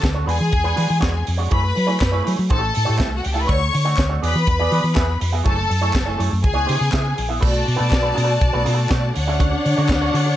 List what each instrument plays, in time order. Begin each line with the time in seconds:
0.02 fingered electric bass D2, muted clean electric guitar stroke, kick, snare, clap, closed hi-hat
0.14 clean electric guitar C#4 F#4 A4 C#5
0.26 fingered electric bass E2, clean electric guitar G#3 D4 F#4 B4, string section G#4 G#5, open hi-hat
0.39 fingered electric bass E3, muted clean electric guitar stroke
0.51 fingered electric bass E2, muted clean electric guitar stroke, kick, closed hi-hat
0.64 clean electric guitar G#3 D4 F#4 B4
0.76 fingered electric bass E3, clean electric guitar G#3 D4 F#4 B4, open hi-hat
0.89 fingered electric bass E3, muted clean electric guitar stroke
1.00 fingered electric bass E2, clean electric guitar G#3 D4 F#4 C#5, kick, snare, clap, closed hi-hat
1.13 muted clean electric guitar stroke
1.25 fingered electric bass F2, muted clean electric guitar stroke, open hi-hat
1.37 clean electric guitar G#3 D4 F#4 C#5
1.51 fingered electric bass F#2, clean electric guitar A3 E4 G#4 C#5, string section B4 B5, kick, closed hi-hat
1.63 muted clean electric guitar stroke
1.75 fingered electric bass F#3, muted clean electric guitar stroke, open hi-hat
1.87 clean electric guitar A3 E4 G#4 C#5
1.99 fingered electric bass F#2, muted clean electric guitar stroke, kick, snare, clap, closed hi-hat
2.12 clean electric guitar A3 E4 G#4 C#5
2.24 fingered electric bass F#3, clean electric guitar A3 E4 G#4 C#5, open hi-hat
2.37 fingered electric bass F#3, muted clean electric guitar stroke
2.50 fingered electric bass A1, clean electric guitar A3 E4 G4 C#5, string section A4 A5, kick, closed hi-hat
2.62 muted clean electric guitar stroke
2.74 fingered electric bass A2, muted clean electric guitar stroke, open hi-hat
2.85 clean electric guitar A3 E4 G4 C#5
2.89 fingered electric bass A2
2.97 fingered electric bass C2, clean electric guitar A3 E4 G4 E5, kick, snare, clap, closed hi-hat
3.10 muted clean electric guitar stroke
3.17 string section F#4 F#5
3.22 fingered electric bass C#2, string section G4 G5, muted clean electric guitar stroke, open hi-hat
3.33 clean electric guitar A3 E4 G4 E5, string section A4 A5
3.41 string section B4 B5
3.46 fingered electric bass D2, clean electric guitar A3 D4 F#4 C#5, string section C#5 C#6, kick, closed hi-hat
3.59 muted clean electric guitar stroke
3.72 fingered electric bass D3, muted clean electric guitar stroke, open hi-hat
3.85 clean electric guitar A3 D4 F#4 C#5
3.97 fingered electric bass D2, muted clean electric guitar stroke, kick, snare, clap, closed hi-hat
4.09 clean electric guitar A3 D4 F#4 C#5
4.22 fingered electric bass E2, clean electric guitar B3 F#4 G#4 D5, string section B4 B5, open hi-hat
4.35 fingered electric bass E3, muted clean electric guitar stroke
4.47 fingered electric bass E2, muted clean electric guitar stroke, kick, closed hi-hat
4.59 clean electric guitar B3 F#4 G#4 D5
4.71 fingered electric bass E3, clean electric guitar B3 F#4 G#4 D5, open hi-hat
4.83 fingered electric bass E3, muted clean electric guitar stroke
4.95 fingered electric bass E2, clean electric guitar B3 F#4 G#4 E5, kick, snare, clap, closed hi-hat
5.08 muted clean electric guitar stroke
5.20 fingered electric bass F2, muted clean electric guitar stroke, open hi-hat
5.32 clean electric guitar B3 F#4 G#4 E5
5.43 fingered electric bass F#1, clean electric guitar A3 E4 G#4 C#5, string section A4 A5, kick, closed hi-hat
5.57 muted clean electric guitar stroke
5.69 fingered electric bass F#2, muted clean electric guitar stroke, open hi-hat
5.81 clean electric guitar A3 E4 G#4 C#5
5.93 fingered electric bass F#1, muted clean electric guitar stroke, kick, snare, clap, closed hi-hat
6.06 clean electric guitar A3 E4 G#4 C#5
6.18 fingered electric bass F#2, clean electric guitar A3 E4 G#4 C#5, open hi-hat
6.30 fingered electric bass F#2, muted clean electric guitar stroke
6.42 fingered electric bass C#2, string section G#4 G#5, muted clean electric guitar stroke, kick, closed hi-hat
6.53 clean electric guitar B3 E4 G#4 C#5
6.66 fingered electric bass C#3, clean electric guitar B3 E4 G#4 C#5, open hi-hat
6.79 fingered electric bass C#3, muted clean electric guitar stroke
6.92 fingered electric bass C#3, clean electric guitar B3 E4 G#4 E5, kick, snare, clap, closed hi-hat
7.04 muted clean electric guitar stroke
7.17 fingered electric bass A#1, muted clean electric guitar stroke, open hi-hat
7.29 clean electric guitar B3 E4 G#4 E5
7.40 fingered electric bass B1, clean electric guitar A3 D4 F#4 B4, string section F#4 D5 A5, kick, crash
7.52 muted clean electric guitar stroke
7.65 fingered electric bass B2, muted clean electric guitar stroke, open hi-hat
7.76 fingered electric bass B2, clean electric guitar A3 D4 F#4 B4
7.89 fingered electric bass B1, muted clean electric guitar stroke, kick, clap, closed hi-hat
7.93 snare
8.02 clean electric guitar A3 D4 F#4 B4
8.14 fingered electric bass B2, clean electric guitar A3 D4 F#4 B4, open hi-hat
8.28 muted clean electric guitar stroke
8.40 fingered electric bass B1, muted clean electric guitar stroke, kick, closed hi-hat
8.53 fingered electric bass B1, clean electric guitar A3 D4 F#4 B4
8.64 fingered electric bass B2, clean electric guitar A3 D4 F#4 B4, open hi-hat
8.76 muted clean electric guitar stroke
8.89 fingered electric bass B2, clean electric guitar A3 D4 F#4 C#5, kick, snare, clap, closed hi-hat
9.02 muted clean electric guitar stroke
9.14 fingered electric bass D2, string section D4 C#5 F#5, muted clean electric guitar stroke, open hi-hat
9.27 clean electric guitar C#4 F#4 A4 E5
9.39 clean electric guitar C#4 F#4 A4 C#5, kick, closed hi-hat
9.52 muted clean electric guitar stroke
9.65 fingered electric bass D3, muted clean electric guitar stroke, open hi-hat
9.77 fingered electric bass D3, clean electric guitar C#4 F#4 A4 C#5
9.89 fingered electric bass D2, muted clean electric guitar stroke, kick, snare, clap, closed hi-hat
10.02 clean electric guitar C#4 F#4 A4 C#5
10.13 fingered electric bass D3, clean electric guitar C#4 F#4 A4 C#5, open hi-hat
10.26 muted clean electric guitar stroke